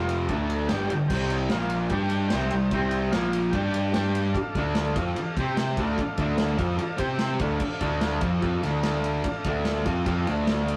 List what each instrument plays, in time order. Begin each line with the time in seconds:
Already playing: picked electric bass F1, distorted electric guitar F2 C3 F3, transistor combo organ F4 C5 F5
0.09 ride
0.26 picked electric bass D2, distorted electric guitar D3, transistor combo organ A4 D5 A5, kick, ride
0.31 distorted electric guitar A3 D4
0.50 ride
0.67 picked electric bass G1, distorted electric guitar G2, transistor combo organ G4 D5 G5, snare, ride
0.72 distorted electric guitar D3 G3
0.89 picked electric bass G1, distorted electric guitar G2, ride
0.94 distorted electric guitar D3
1.08 picked electric bass C2, distorted electric guitar C3, transistor combo organ G4 C5 G5, kick, crash
1.12 distorted electric guitar G3 C4
1.30 ride
1.49 picked electric bass A#1, distorted electric guitar A#2 F3, transistor combo organ F4 A#4 F5, snare, ride
1.54 distorted electric guitar A#3
1.70 ride
1.89 picked electric bass G2, distorted electric guitar G3 D4 G4, transistor combo organ G4 D5 G5, kick, ride
2.10 ride
2.28 transistor combo organ G4 C5 G5, snare, ride
2.32 picked electric bass C2, distorted electric guitar C3 G3 C4
2.51 picked electric bass C2, distorted electric guitar C3 G3, ride
2.71 picked electric bass C2, distorted electric guitar C3 G3 C4, transistor combo organ G4 C5 G5, kick, ride
2.91 ride
3.11 picked electric bass A#1, distorted electric guitar A#2 F3, transistor combo organ F4 A#4 F5, snare, ride
3.16 distorted electric guitar A#3
3.33 ride
3.50 picked electric bass G2, transistor combo organ G4 D5 G5, kick, ride
3.54 distorted electric guitar G3 D4 G4
3.74 ride
3.92 distorted electric guitar G3 D4, transistor combo organ G4 D5 G5, snare, ride
3.96 picked electric bass G2, distorted electric guitar G4
4.15 ride
4.33 transistor combo organ A4 D5 F5, kick, ride
4.55 picked electric bass D2, distorted electric guitar D3 A3 D4, kick, ride
4.75 transistor combo organ A4 D5 F5, snare, ride
4.96 picked electric bass F2, distorted electric guitar F3 C4 F4, kick, ride
5.14 transistor combo organ A4 D5 F5, muted picked electric bass stroke, ride
5.19 muted distorted electric guitar stroke
5.36 picked electric bass C3, distorted electric guitar C4, transistor combo organ G4 C5 G5, kick, ride
5.41 distorted electric guitar G4 C5
5.57 snare, ride
5.77 picked electric bass D2, distorted electric guitar D3 A3 D4, transistor combo organ A4 D5 F5, kick, ride
5.98 kick, ride
6.17 picked electric bass D2, distorted electric guitar D3 A3 D4, kick, ride
6.36 transistor combo organ A4 D5 F5, snare, ride
6.58 picked electric bass F2, distorted electric guitar F3 C4 F4, kick, ride
6.78 transistor combo organ A4 D5 F5, muted distorted electric guitar stroke, muted picked electric bass stroke, ride
6.97 picked electric bass C3, distorted electric guitar C4 G4 C5, transistor combo organ G4 C5 G5, kick, ride
7.19 snare, ride
7.39 picked electric bass D2, distorted electric guitar D3 A3 D4, transistor combo organ A4 D5 F5, kick, ride
7.60 kick, crash
7.81 picked electric bass D2, distorted electric guitar D3 A3 D4, kick, ride
8.01 transistor combo organ A4 D5 F5, snare, ride
8.21 picked electric bass F2, distorted electric guitar F3 C4 F4, kick, ride
8.41 picked electric bass F2, distorted electric guitar F3 C4 F4, transistor combo organ A4 D5 F5, kick, ride
8.63 picked electric bass D2, distorted electric guitar D3 A3 D4, snare, ride
8.82 transistor combo organ A4 D5 F5, snare, ride
9.04 ride
9.23 transistor combo organ A4 D5 F5, kick, ride
9.44 picked electric bass D2, distorted electric guitar D3 A3 D4, kick, ride
9.64 transistor combo organ A4 D5 F5, snare, ride
9.85 picked electric bass F2, distorted electric guitar F3 C4 F4, kick, ride
10.05 picked electric bass F2, distorted electric guitar F3 C4 F4, transistor combo organ A4 D5 F5, kick, ride
10.27 picked electric bass D2, distorted electric guitar D3 A3 D4, ride
10.47 transistor combo organ A4 D5 F5, snare, ride
10.68 ride